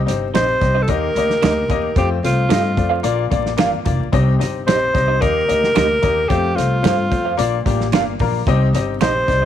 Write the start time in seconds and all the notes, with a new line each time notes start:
Already playing: C3
0.06 G1 C4 D#4 G4 C5, snare, closed hi-hat
0.34 A#1 C4 D#4 G4 C5 D#5, finger snap, snare, closed hi-hat, high conga
0.61 C2 C4 D#4 G4 D#5, kick, snare, closed hi-hat
0.75 D#4 G4 C5 D#5
0.82 A4
0.88 D#2 D#3 A#3 D#4 G4 A#4 D#5, kick, closed hi-hat, muted conga
1.15 D2 A#3 D#4 G4 D#5, closed hi-hat, muted conga
1.30 snare
1.42 D2 A#3 D#4 G4 A#4 D#5, finger snap, snare, closed hi-hat, high conga
1.68 D#2 A#3 D#4 G4 D#5, kick, closed hi-hat, high conga
1.96 F2 A3 C4 F4 G4 C5, kick, closed hi-hat
2.23 C2 A3 C4 F4 C5, snare, closed hi-hat
2.49 G2 A3 C4 F4 A4 C5 D#5 F5, finger snap, snare, closed hi-hat, high conga
2.77 F2 A3 C4 F4 D5, kick, closed hi-hat
2.90 F4 A4 C5 F5
3.03 A#1 A#2 A#3 D4 F4 D5, closed hi-hat, muted conga
3.30 A1 A#3 D4 F4 D5, kick, closed hi-hat, muted conga, low conga
3.46 snare
3.57 G1 A#3 D4 F4 A#4 D5 F5, finger snap, snare, closed hi-hat, high conga
3.74 high conga
3.85 F1 A#3 D4 F4 D5, kick, closed hi-hat, high conga
4.00 A#1
4.12 C2 C3 C4 D#4 G4 D#5, kick, closed hi-hat
4.39 C4 D#4 G4 D#5, snare, closed hi-hat
4.67 A#1 C4 D#4 G4 C5 D#5, finger snap, snare, closed hi-hat, high conga
4.93 C2 C4 D#4 G4 D#5, kick, snare, closed hi-hat, muted conga
5.08 D#4 G4 C5 D#5
5.21 D#2 D#3 A#3 D#4 G4 A#4 D#5, kick, closed hi-hat, muted conga
5.48 D2 A#3 D#4 G4 D#5, closed hi-hat, muted conga
5.64 snare
5.74 D2 A#3 D#4 G4 A#4 D#5, finger snap, snare, closed hi-hat, high conga
6.02 D#2 A#3 D#4 G4 D#5, kick, closed hi-hat, high conga
6.28 F2 A3 C4 F4 G4 C5, kick, closed hi-hat
6.55 C2 A3 C4 F4 C5, snare, closed hi-hat
6.82 G2 A3 C4 F4 A4 C5, finger snap, snare, closed hi-hat, high conga
6.86 C5 F5
7.10 F2 A3 C4 F4 C5, kick, closed hi-hat, muted conga
7.25 F4 A4 C5 F5
7.37 A#1 A#2 A#3 D4 F4 D5, closed hi-hat, muted conga
7.66 A1 A#3 D4 F4 G4 D5, kick, closed hi-hat, muted conga, low conga
7.81 snare
7.92 G1 A#3 D4 F4 A#4 D5 F5, finger snap, snare, closed hi-hat, high conga
8.19 A#1 A#3 D4 F4 A#4 A#5, kick, open hi-hat, high conga
8.47 C2 C3 C4 D#4 G4 D#5, kick, closed hi-hat
8.73 G1 C4 D#4 G4 D#5, snare, closed hi-hat
9.01 A#1 C4 D#4 G4 C5 D#5, finger snap, snare, closed hi-hat, high conga
9.28 C2 C4 D#4 G4 D5, kick, snare, closed hi-hat